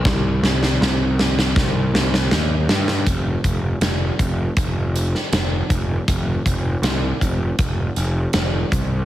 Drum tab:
HH |----------------|x-x-x-x-x-x-x-x-|x-x-x-x-x-x-x-x-|
SD |o-ooo-ooo-ooo-oo|----o------oo---|----o-------o---|
BD |o-------o-------|o-o---o-o-----o-|o-o---o-o-----o-|